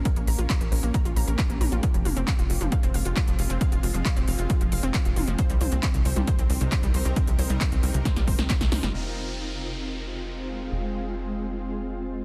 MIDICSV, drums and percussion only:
0, 0, Header, 1, 2, 480
1, 0, Start_track
1, 0, Key_signature, -4, "minor"
1, 0, Tempo, 444444
1, 57, Time_signature, 4, 2, 24, 8
1, 13227, End_track
2, 0, Start_track
2, 0, Title_t, "Drums"
2, 56, Note_on_c, 9, 42, 88
2, 58, Note_on_c, 9, 36, 123
2, 164, Note_off_c, 9, 42, 0
2, 166, Note_off_c, 9, 36, 0
2, 176, Note_on_c, 9, 42, 50
2, 284, Note_off_c, 9, 42, 0
2, 297, Note_on_c, 9, 46, 112
2, 405, Note_off_c, 9, 46, 0
2, 417, Note_on_c, 9, 42, 50
2, 525, Note_off_c, 9, 42, 0
2, 538, Note_on_c, 9, 36, 122
2, 538, Note_on_c, 9, 39, 114
2, 538, Note_on_c, 9, 42, 86
2, 646, Note_off_c, 9, 36, 0
2, 646, Note_off_c, 9, 39, 0
2, 646, Note_off_c, 9, 42, 0
2, 657, Note_on_c, 9, 42, 50
2, 765, Note_off_c, 9, 42, 0
2, 778, Note_on_c, 9, 46, 107
2, 886, Note_off_c, 9, 46, 0
2, 897, Note_on_c, 9, 42, 49
2, 1005, Note_off_c, 9, 42, 0
2, 1018, Note_on_c, 9, 36, 121
2, 1018, Note_on_c, 9, 42, 86
2, 1126, Note_off_c, 9, 36, 0
2, 1126, Note_off_c, 9, 42, 0
2, 1138, Note_on_c, 9, 42, 50
2, 1246, Note_off_c, 9, 42, 0
2, 1259, Note_on_c, 9, 46, 117
2, 1367, Note_off_c, 9, 46, 0
2, 1378, Note_on_c, 9, 42, 50
2, 1486, Note_off_c, 9, 42, 0
2, 1498, Note_on_c, 9, 36, 123
2, 1498, Note_on_c, 9, 39, 114
2, 1498, Note_on_c, 9, 42, 87
2, 1606, Note_off_c, 9, 36, 0
2, 1606, Note_off_c, 9, 39, 0
2, 1606, Note_off_c, 9, 42, 0
2, 1618, Note_on_c, 9, 42, 51
2, 1726, Note_off_c, 9, 42, 0
2, 1738, Note_on_c, 9, 46, 110
2, 1738, Note_on_c, 9, 47, 83
2, 1846, Note_off_c, 9, 46, 0
2, 1846, Note_off_c, 9, 47, 0
2, 1858, Note_on_c, 9, 42, 47
2, 1966, Note_off_c, 9, 42, 0
2, 1977, Note_on_c, 9, 42, 86
2, 1978, Note_on_c, 9, 36, 120
2, 2085, Note_off_c, 9, 42, 0
2, 2086, Note_off_c, 9, 36, 0
2, 2098, Note_on_c, 9, 42, 52
2, 2206, Note_off_c, 9, 42, 0
2, 2218, Note_on_c, 9, 46, 102
2, 2218, Note_on_c, 9, 47, 65
2, 2326, Note_off_c, 9, 46, 0
2, 2326, Note_off_c, 9, 47, 0
2, 2339, Note_on_c, 9, 42, 49
2, 2447, Note_off_c, 9, 42, 0
2, 2459, Note_on_c, 9, 36, 122
2, 2459, Note_on_c, 9, 39, 109
2, 2459, Note_on_c, 9, 42, 89
2, 2567, Note_off_c, 9, 36, 0
2, 2567, Note_off_c, 9, 39, 0
2, 2567, Note_off_c, 9, 42, 0
2, 2580, Note_on_c, 9, 42, 47
2, 2688, Note_off_c, 9, 42, 0
2, 2698, Note_on_c, 9, 46, 100
2, 2806, Note_off_c, 9, 46, 0
2, 2818, Note_on_c, 9, 42, 49
2, 2818, Note_on_c, 9, 47, 60
2, 2926, Note_off_c, 9, 42, 0
2, 2926, Note_off_c, 9, 47, 0
2, 2937, Note_on_c, 9, 42, 84
2, 2939, Note_on_c, 9, 36, 122
2, 3045, Note_off_c, 9, 42, 0
2, 3047, Note_off_c, 9, 36, 0
2, 3059, Note_on_c, 9, 42, 52
2, 3167, Note_off_c, 9, 42, 0
2, 3178, Note_on_c, 9, 46, 113
2, 3286, Note_off_c, 9, 46, 0
2, 3298, Note_on_c, 9, 42, 51
2, 3406, Note_off_c, 9, 42, 0
2, 3418, Note_on_c, 9, 39, 114
2, 3418, Note_on_c, 9, 42, 85
2, 3419, Note_on_c, 9, 36, 117
2, 3526, Note_off_c, 9, 39, 0
2, 3526, Note_off_c, 9, 42, 0
2, 3527, Note_off_c, 9, 36, 0
2, 3538, Note_on_c, 9, 42, 52
2, 3646, Note_off_c, 9, 42, 0
2, 3658, Note_on_c, 9, 46, 107
2, 3766, Note_off_c, 9, 46, 0
2, 3779, Note_on_c, 9, 42, 50
2, 3887, Note_off_c, 9, 42, 0
2, 3898, Note_on_c, 9, 42, 88
2, 3899, Note_on_c, 9, 36, 112
2, 4006, Note_off_c, 9, 42, 0
2, 4007, Note_off_c, 9, 36, 0
2, 4019, Note_on_c, 9, 42, 50
2, 4127, Note_off_c, 9, 42, 0
2, 4139, Note_on_c, 9, 46, 102
2, 4247, Note_off_c, 9, 46, 0
2, 4260, Note_on_c, 9, 42, 52
2, 4368, Note_off_c, 9, 42, 0
2, 4379, Note_on_c, 9, 36, 114
2, 4380, Note_on_c, 9, 39, 112
2, 4380, Note_on_c, 9, 42, 95
2, 4487, Note_off_c, 9, 36, 0
2, 4488, Note_off_c, 9, 39, 0
2, 4488, Note_off_c, 9, 42, 0
2, 4499, Note_on_c, 9, 42, 51
2, 4607, Note_off_c, 9, 42, 0
2, 4618, Note_on_c, 9, 46, 98
2, 4726, Note_off_c, 9, 46, 0
2, 4738, Note_on_c, 9, 42, 52
2, 4846, Note_off_c, 9, 42, 0
2, 4857, Note_on_c, 9, 42, 89
2, 4858, Note_on_c, 9, 36, 116
2, 4965, Note_off_c, 9, 42, 0
2, 4966, Note_off_c, 9, 36, 0
2, 4977, Note_on_c, 9, 42, 53
2, 5085, Note_off_c, 9, 42, 0
2, 5097, Note_on_c, 9, 46, 108
2, 5205, Note_off_c, 9, 46, 0
2, 5217, Note_on_c, 9, 42, 54
2, 5325, Note_off_c, 9, 42, 0
2, 5336, Note_on_c, 9, 39, 113
2, 5336, Note_on_c, 9, 42, 88
2, 5338, Note_on_c, 9, 36, 113
2, 5444, Note_off_c, 9, 39, 0
2, 5444, Note_off_c, 9, 42, 0
2, 5446, Note_off_c, 9, 36, 0
2, 5457, Note_on_c, 9, 42, 51
2, 5565, Note_off_c, 9, 42, 0
2, 5577, Note_on_c, 9, 46, 104
2, 5577, Note_on_c, 9, 47, 80
2, 5685, Note_off_c, 9, 46, 0
2, 5685, Note_off_c, 9, 47, 0
2, 5696, Note_on_c, 9, 42, 50
2, 5804, Note_off_c, 9, 42, 0
2, 5816, Note_on_c, 9, 42, 94
2, 5818, Note_on_c, 9, 36, 114
2, 5924, Note_off_c, 9, 42, 0
2, 5926, Note_off_c, 9, 36, 0
2, 5936, Note_on_c, 9, 42, 55
2, 6044, Note_off_c, 9, 42, 0
2, 6056, Note_on_c, 9, 46, 101
2, 6056, Note_on_c, 9, 47, 61
2, 6164, Note_off_c, 9, 46, 0
2, 6164, Note_off_c, 9, 47, 0
2, 6175, Note_on_c, 9, 42, 56
2, 6283, Note_off_c, 9, 42, 0
2, 6296, Note_on_c, 9, 39, 117
2, 6296, Note_on_c, 9, 42, 97
2, 6298, Note_on_c, 9, 36, 114
2, 6404, Note_off_c, 9, 39, 0
2, 6404, Note_off_c, 9, 42, 0
2, 6406, Note_off_c, 9, 36, 0
2, 6416, Note_on_c, 9, 42, 52
2, 6524, Note_off_c, 9, 42, 0
2, 6536, Note_on_c, 9, 46, 101
2, 6644, Note_off_c, 9, 46, 0
2, 6657, Note_on_c, 9, 42, 52
2, 6657, Note_on_c, 9, 47, 58
2, 6765, Note_off_c, 9, 42, 0
2, 6765, Note_off_c, 9, 47, 0
2, 6777, Note_on_c, 9, 42, 93
2, 6778, Note_on_c, 9, 36, 116
2, 6885, Note_off_c, 9, 42, 0
2, 6886, Note_off_c, 9, 36, 0
2, 6897, Note_on_c, 9, 42, 57
2, 7005, Note_off_c, 9, 42, 0
2, 7016, Note_on_c, 9, 46, 107
2, 7124, Note_off_c, 9, 46, 0
2, 7137, Note_on_c, 9, 42, 55
2, 7245, Note_off_c, 9, 42, 0
2, 7257, Note_on_c, 9, 39, 117
2, 7257, Note_on_c, 9, 42, 94
2, 7258, Note_on_c, 9, 36, 116
2, 7365, Note_off_c, 9, 39, 0
2, 7365, Note_off_c, 9, 42, 0
2, 7366, Note_off_c, 9, 36, 0
2, 7378, Note_on_c, 9, 42, 52
2, 7486, Note_off_c, 9, 42, 0
2, 7497, Note_on_c, 9, 46, 101
2, 7605, Note_off_c, 9, 46, 0
2, 7617, Note_on_c, 9, 42, 54
2, 7725, Note_off_c, 9, 42, 0
2, 7737, Note_on_c, 9, 42, 98
2, 7738, Note_on_c, 9, 36, 120
2, 7845, Note_off_c, 9, 42, 0
2, 7846, Note_off_c, 9, 36, 0
2, 7857, Note_on_c, 9, 42, 55
2, 7965, Note_off_c, 9, 42, 0
2, 7977, Note_on_c, 9, 46, 105
2, 8085, Note_off_c, 9, 46, 0
2, 8098, Note_on_c, 9, 42, 54
2, 8206, Note_off_c, 9, 42, 0
2, 8217, Note_on_c, 9, 39, 124
2, 8217, Note_on_c, 9, 42, 95
2, 8218, Note_on_c, 9, 36, 111
2, 8325, Note_off_c, 9, 39, 0
2, 8325, Note_off_c, 9, 42, 0
2, 8326, Note_off_c, 9, 36, 0
2, 8337, Note_on_c, 9, 42, 54
2, 8445, Note_off_c, 9, 42, 0
2, 8457, Note_on_c, 9, 46, 99
2, 8565, Note_off_c, 9, 46, 0
2, 8579, Note_on_c, 9, 42, 54
2, 8687, Note_off_c, 9, 42, 0
2, 8698, Note_on_c, 9, 36, 115
2, 8699, Note_on_c, 9, 38, 59
2, 8699, Note_on_c, 9, 42, 99
2, 8806, Note_off_c, 9, 36, 0
2, 8807, Note_off_c, 9, 38, 0
2, 8807, Note_off_c, 9, 42, 0
2, 8818, Note_on_c, 9, 38, 58
2, 8818, Note_on_c, 9, 42, 54
2, 8926, Note_off_c, 9, 38, 0
2, 8926, Note_off_c, 9, 42, 0
2, 8938, Note_on_c, 9, 36, 60
2, 8938, Note_on_c, 9, 46, 105
2, 9046, Note_off_c, 9, 36, 0
2, 9046, Note_off_c, 9, 46, 0
2, 9059, Note_on_c, 9, 38, 72
2, 9059, Note_on_c, 9, 42, 55
2, 9167, Note_off_c, 9, 38, 0
2, 9167, Note_off_c, 9, 42, 0
2, 9177, Note_on_c, 9, 38, 85
2, 9177, Note_on_c, 9, 39, 122
2, 9177, Note_on_c, 9, 42, 94
2, 9178, Note_on_c, 9, 36, 118
2, 9285, Note_off_c, 9, 38, 0
2, 9285, Note_off_c, 9, 39, 0
2, 9285, Note_off_c, 9, 42, 0
2, 9286, Note_off_c, 9, 36, 0
2, 9298, Note_on_c, 9, 38, 78
2, 9298, Note_on_c, 9, 42, 56
2, 9406, Note_off_c, 9, 38, 0
2, 9406, Note_off_c, 9, 42, 0
2, 9417, Note_on_c, 9, 38, 97
2, 9417, Note_on_c, 9, 46, 102
2, 9417, Note_on_c, 9, 47, 76
2, 9525, Note_off_c, 9, 38, 0
2, 9525, Note_off_c, 9, 46, 0
2, 9525, Note_off_c, 9, 47, 0
2, 9538, Note_on_c, 9, 38, 89
2, 9538, Note_on_c, 9, 42, 54
2, 9646, Note_off_c, 9, 38, 0
2, 9646, Note_off_c, 9, 42, 0
2, 13227, End_track
0, 0, End_of_file